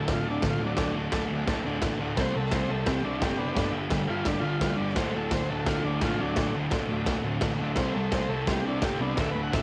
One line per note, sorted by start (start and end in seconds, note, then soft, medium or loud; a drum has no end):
0.02 0.17 A4 medium
0.02 0.18 D5 medium
0.02 0.18 E5 medium
0.08 0.20 D1 medium
0.08 0.24 D2 medium
0.08 0.24 A2 medium
0.08 0.26 D3 loud
0.08 kick loud
0.08 snare loud
0.08 crash medium
0.13 0.27 F4 medium
0.22 0.37 D1 loud
0.22 0.41 D2 medium
0.22 0.42 A2 medium
0.22 0.36 A4 medium
0.22 0.36 D5 medium
0.22 0.37 A5 medium
0.27 0.42 D3 medium
0.27 0.45 D4 medium
0.39 0.58 D2 medium
0.39 0.53 A4 medium
0.39 0.54 D5 medium
0.39 0.54 F#5 medium
0.39 snare loud
0.39 crash medium
0.43 0.55 A1 medium
0.43 0.59 A2 medium
0.43 0.59 D3 medium
0.43 kick loud
0.50 0.63 F4 medium
0.59 0.72 D1 medium
0.59 0.75 D2 medium
0.59 0.75 A2 loud
0.59 0.76 D3 loud
0.59 0.72 A4 medium
0.59 0.72 D5 medium
0.59 0.72 F#5 medium
0.65 0.95 F#3 medium
0.65 0.97 D4 loud
0.76 0.90 D1 medium
0.76 0.92 D2 medium
0.76 0.94 A2 medium
0.76 0.94 D3 loud
0.76 0.89 A4 loud
0.76 0.91 D5 loud
0.76 0.91 F#5 loud
0.76 kick loud
0.76 snare loud
0.76 crash medium
0.93 1.06 D1 loud
0.93 1.10 D2 medium
0.93 1.12 A2 medium
0.93 1.12 D3 loud
0.93 1.08 A4 medium
0.93 1.08 D5 medium
0.98 1.09 F#5 medium
1.12 1.25 D1 medium
1.12 1.28 D2 medium
1.12 1.29 A2 medium
1.12 1.30 D3 medium
1.12 1.24 A4 medium
1.12 1.25 D5 medium
1.12 1.26 A5 loud
1.12 kick loud
1.12 snare loud
1.12 crash medium
1.29 1.46 D2 medium
1.29 1.43 D2 medium
1.29 1.46 A2 medium
1.29 1.47 D3 medium
1.34 1.45 A4 loud
1.34 1.45 D5 medium
1.34 1.46 F#5 loud
1.47 1.60 D1 medium
1.47 1.64 D2 medium
1.47 1.64 A2 loud
1.47 1.65 D3 loud
1.47 1.60 A4 loud
1.47 1.61 D5 loud
1.47 1.61 A5 loud
1.47 kick loud
1.47 snare loud
1.47 crash medium
1.65 1.77 D1 loud
1.65 1.80 D2 medium
1.65 1.82 A2 medium
1.65 1.82 D3 loud
1.65 1.78 A4 medium
1.65 1.78 D5 medium
1.65 1.78 F#5 loud
1.82 1.95 A1 medium
1.82 1.97 D2 medium
1.82 1.98 A2 loud
1.82 1.99 D3 loud
1.82 1.96 A4 medium
1.82 1.95 D5 medium
1.82 1.96 F#5 loud
1.82 kick loud
1.82 snare loud
1.82 crash medium
1.99 2.13 D1 medium
1.99 2.16 D2 medium
1.99 2.16 A2 medium
1.99 2.17 D3 loud
1.99 2.12 A4 medium
1.99 2.12 D5 medium
1.99 2.13 F#5 loud
2.15 2.30 C2 medium
2.15 2.34 C3 loud
2.15 2.34 G3 loud
2.15 2.34 C4 loud
2.15 2.29 G4 loud
2.15 2.29 C5 loud
2.15 2.30 E5 loud
2.15 kick loud
2.15 snare loud
2.15 crash medium
2.20 2.36 C5 loud
2.32 2.51 C3 medium
2.32 2.52 G3 loud
2.32 2.52 C4 loud
2.32 2.46 G4 medium
2.32 2.46 C5 medium
2.32 2.47 F#5 medium
2.36 2.48 C2 medium
2.36 2.53 A4 medium
2.49 2.64 C2 loud
2.49 2.68 C3 medium
2.49 2.69 G3 medium
2.49 2.63 G4 medium
2.49 2.64 C5 medium
2.49 2.65 E5 medium
2.49 kick loud
2.49 snare loud
2.49 crash medium
2.53 2.69 C4 medium
2.53 2.71 C5 loud
2.68 2.82 C2 medium
2.68 2.85 C3 medium
2.68 2.86 G3 medium
2.68 2.86 C4 loud
2.68 2.81 G4 medium
2.68 2.87 A4 medium
2.68 2.82 C5 medium
2.68 2.82 E5 medium
2.83 2.99 C2 medium
2.83 3.02 C3 loud
2.83 2.98 G4 medium
2.83 2.98 C5 medium
2.83 2.99 E5 loud
2.83 kick loud
2.83 snare loud
2.83 crash medium
2.87 3.02 G3 loud
2.87 3.03 C4 loud
2.87 3.05 G4 medium
3.02 3.17 C2 medium
3.02 3.19 C3 loud
3.02 3.21 G3 loud
3.02 3.21 C4 loud
3.02 3.22 D4 medium
3.02 3.16 G4 medium
3.02 3.16 C5 medium
3.02 3.17 E5 medium
3.19 3.34 G1 medium
3.19 3.36 C3 medium
3.19 3.37 G3 medium
3.19 3.38 C4 loud
3.19 3.33 G4 medium
3.19 3.39 G4 medium
3.19 3.34 C5 medium
3.19 3.34 D5 medium
3.19 kick loud
3.19 snare loud
3.19 crash medium
3.37 3.51 F#1 medium
3.37 3.54 C3 medium
3.37 3.55 G3 medium
3.37 3.71 B3 medium
3.37 3.56 C4 loud
3.37 3.73 D4 loud
3.37 3.51 G4 medium
3.37 3.51 C5 medium
3.37 3.51 G5 medium
3.53 3.71 G2 medium
3.53 3.71 D3 loud
3.53 3.71 G3 loud
3.53 3.68 G4 loud
3.53 3.68 B4 loud
3.53 3.69 D5 loud
3.53 kick loud
3.53 snare loud
3.53 crash medium
3.57 3.70 G1 loud
3.70 3.89 G2 loud
3.70 3.90 D3 loud
3.70 3.91 G3 loud
3.70 3.85 G4 medium
3.70 3.85 B4 medium
3.70 3.85 E5 medium
3.75 3.87 G1 medium
3.90 4.04 G1 loud
3.90 4.07 G2 medium
3.90 4.07 D3 medium
3.90 4.07 G3 medium
3.90 4.04 G4 medium
3.90 4.04 B4 medium
3.90 4.03 D5 loud
3.90 kick loud
3.90 snare loud
3.90 crash medium
4.08 4.24 G2 medium
4.08 4.21 G2 medium
4.08 4.24 D3 medium
4.08 4.25 G3 loud
4.08 4.27 F4 loud
4.08 4.21 G4 medium
4.08 4.21 B4 medium
4.08 4.21 E5 medium
4.23 4.39 G1 medium
4.23 4.41 G2 loud
4.23 4.42 D3 medium
4.23 4.42 G3 loud
4.23 4.44 D4 medium
4.23 4.37 G4 medium
4.23 4.38 B4 medium
4.23 4.38 D5 medium
4.23 kick loud
4.23 snare loud
4.23 crash medium
4.40 4.56 G1 loud
4.40 4.59 G2 medium
4.40 4.60 D3 medium
4.40 4.60 G3 medium
4.40 4.77 F4 loud
4.40 4.56 G4 medium
4.40 4.56 B4 medium
4.40 4.56 D5 medium
4.58 4.74 D2 medium
4.58 4.74 G2 medium
4.58 4.76 D3 medium
4.58 4.76 G3 loud
4.58 4.73 G4 medium
4.58 4.74 B4 medium
4.58 4.74 D5 medium
4.58 kick loud
4.58 snare loud
4.58 crash medium
4.75 4.94 G2 medium
4.75 4.95 D3 medium
4.75 4.95 G3 loud
4.75 4.95 D4 loud
4.75 4.91 G4 medium
4.75 4.91 B4 medium
4.80 4.92 G1 medium
4.80 4.92 D5 medium
4.95 5.09 D1 medium
4.95 5.13 D2 medium
4.95 5.12 A2 medium
4.95 5.14 D3 loud
4.95 5.08 F#4 loud
4.95 5.09 A4 loud
4.95 5.15 C5 medium
4.95 5.09 D5 loud
4.95 kick loud
4.95 snare loud
4.95 crash medium
5.10 5.30 D2 medium
5.10 5.30 A2 medium
5.10 5.32 D3 loud
5.10 5.25 F#4 medium
5.10 5.25 A4 medium
5.10 5.26 D5 medium
5.14 5.27 D1 medium
5.14 5.32 A4 medium
5.27 5.50 D2 medium
5.27 5.42 F#4 medium
5.27 5.43 A4 medium
5.27 5.43 D5 medium
5.27 kick loud
5.27 snare loud
5.27 crash medium
5.32 5.44 D1 medium
5.32 5.49 A2 medium
5.32 5.50 D3 loud
5.32 5.50 C5 loud
5.47 5.64 D2 medium
5.47 5.64 A2 loud
5.47 5.61 F#4 medium
5.47 5.61 A4 medium
5.47 5.67 A4 medium
5.47 5.62 D5 medium
5.51 5.63 D2 loud
5.51 5.65 D3 loud
5.63 5.79 D1 medium
5.63 5.83 D2 medium
5.63 5.84 A2 medium
5.63 5.84 D3 loud
5.63 5.84 F4 medium
5.63 5.77 F#4 medium
5.63 5.78 A4 medium
5.63 5.78 D5 medium
5.63 kick loud
5.63 snare loud
5.63 crash medium
5.79 5.94 F#4 medium
5.79 5.95 A4 medium
5.79 5.95 D5 medium
5.84 5.97 D1 loud
5.84 6.02 D2 medium
5.84 6.02 A2 medium
5.84 6.03 D3 loud
5.84 6.02 D4 medium
5.99 6.15 A1 medium
5.99 6.13 F#4 medium
5.99 6.13 A4 medium
5.99 6.13 D5 medium
5.99 kick loud
5.99 snare loud
5.99 crash medium
6.03 6.18 D2 medium
6.03 6.19 A2 loud
6.03 6.20 D3 medium
6.03 6.21 F4 medium
6.15 6.36 D2 medium
6.15 6.52 F#3 medium
6.15 6.30 F#4 medium
6.15 6.30 A4 medium
6.15 6.31 D5 medium
6.20 6.33 D1 medium
6.20 6.37 A2 medium
6.20 6.38 D3 medium
6.20 6.54 D4 loud
6.35 6.50 D1 loud
6.35 6.55 D2 medium
6.35 6.56 A2 medium
6.35 6.56 D3 loud
6.35 6.49 F#4 loud
6.35 6.49 A4 loud
6.35 6.49 D5 loud
6.35 kick loud
6.35 snare loud
6.35 crash medium
6.53 6.66 D1 medium
6.53 6.70 D2 loud
6.53 6.71 A2 loud
6.53 6.72 D3 loud
6.53 6.66 F#4 medium
6.53 6.67 A4 medium
6.53 6.67 C5 medium
6.69 6.84 D1 loud
6.69 6.87 D2 medium
6.69 6.88 A2 medium
6.69 6.83 F#4 medium
6.69 6.83 A4 medium
6.69 6.83 D5 loud
6.69 kick loud
6.69 snare loud
6.69 crash medium
6.73 6.88 D3 medium
6.88 7.04 D2 loud
6.88 7.03 D2 loud
6.88 7.06 A2 loud
6.88 7.06 D3 medium
6.88 7.02 F#4 medium
6.88 7.02 A4 medium
6.88 7.02 D5 loud
7.04 7.19 D1 loud
7.04 7.23 D2 loud
7.04 7.23 A2 medium
7.04 7.24 D3 loud
7.04 7.18 F#4 medium
7.04 7.18 A4 medium
7.04 7.19 D5 loud
7.04 kick loud
7.04 snare loud
7.04 crash medium
7.23 7.37 D1 loud
7.23 7.40 D2 medium
7.23 7.41 A2 loud
7.23 7.42 D3 loud
7.23 7.36 F#4 loud
7.23 7.37 A4 medium
7.23 7.37 C5 loud
7.39 7.59 D2 medium
7.39 7.59 A2 medium
7.39 7.60 D3 loud
7.39 7.54 F#4 medium
7.39 7.53 A4 medium
7.39 7.54 D5 medium
7.39 kick loud
7.39 snare loud
7.39 crash medium
7.43 7.55 A1 medium
7.60 7.72 D1 medium
7.60 7.76 D2 medium
7.60 7.77 A2 loud
7.60 7.77 D3 loud
7.60 7.72 F#4 medium
7.60 7.72 A4 medium
7.60 7.72 D5 loud
7.75 7.90 C2 loud
7.75 7.95 C3 medium
7.75 7.95 G3 loud
7.75 7.96 C4 loud
7.75 7.90 E4 loud
7.75 7.90 G4 loud
7.75 7.93 C5 medium
7.75 7.91 C5 loud
7.75 kick loud
7.75 snare loud
7.75 crash medium
7.93 8.07 C2 medium
7.93 8.11 C3 medium
7.93 8.12 G3 loud
7.93 8.06 E4 medium
7.93 8.07 G4 medium
7.93 8.12 A4 medium
7.93 8.07 C5 medium
7.97 8.12 C4 loud
8.11 8.24 C2 loud
8.11 8.28 C3 medium
8.11 8.28 G3 medium
8.11 8.29 C4 medium
8.11 8.24 E4 medium
8.11 8.25 G4 medium
8.11 8.25 A4 medium
8.11 8.30 C5 loud
8.11 kick loud
8.11 snare loud
8.11 crash medium
8.29 8.42 C2 medium
8.29 8.45 C3 loud
8.29 8.46 G3 medium
8.29 8.46 C4 medium
8.29 8.42 E4 medium
8.29 8.42 G4 medium
8.29 8.47 A4 medium
8.29 8.42 C5 medium
8.47 8.60 C2 loud
8.47 8.62 C3 medium
8.47 8.63 G3 loud
8.47 8.64 C4 medium
8.47 8.60 E4 medium
8.47 8.65 G4 medium
8.47 8.61 G4 medium
8.47 8.61 C5 loud
8.47 kick loud
8.47 snare loud
8.47 crash medium
8.63 8.77 C2 loud
8.63 8.80 C3 medium
8.63 8.80 G3 medium
8.63 8.81 C4 loud
8.63 8.78 E4 medium
8.63 8.78 G4 medium
8.67 8.83 D4 loud
8.67 8.79 C5 medium
8.81 8.95 G1 medium
8.81 8.98 C3 medium
8.81 9.00 G3 medium
8.81 9.00 C4 loud
8.81 8.96 E4 medium
8.81 9.01 G4 medium
8.81 kick loud
8.81 snare loud
8.81 crash medium
8.85 8.96 G4 medium
8.85 8.96 C5 medium
8.99 9.12 C2 medium
8.99 9.15 C3 medium
8.99 9.16 G3 loud
8.99 9.17 B3 loud
8.99 9.17 C4 loud
8.99 9.18 D4 loud
8.99 9.13 G4 medium
9.03 9.14 E4 medium
9.03 9.14 C5 medium
9.16 9.30 D1 medium
9.16 9.33 D2 medium
9.16 9.34 A2 loud
9.16 9.35 D3 loud
9.16 kick loud
9.16 snare loud
9.16 crash medium
9.20 9.31 F#4 loud
9.20 9.31 A4 loud
9.20 9.31 D5 loud
9.20 9.30 E5 medium
9.31 9.51 D2 medium
9.31 9.42 B4 medium
9.35 9.48 D1 loud
9.35 9.52 A2 loud
9.35 9.53 D3 medium
9.35 9.47 F#4 medium
9.35 9.48 A4 medium
9.35 9.49 D5 medium
9.43 9.53 F#5 medium
9.52 9.62 D1 loud
9.52 9.62 D2 medium
9.52 9.62 A2 medium
9.52 9.62 D3 medium
9.52 9.62 F#4 medium
9.52 9.62 A4 medium
9.52 9.62 D5 medium
9.52 9.62 E5 loud
9.52 kick loud
9.52 snare loud
9.52 crash medium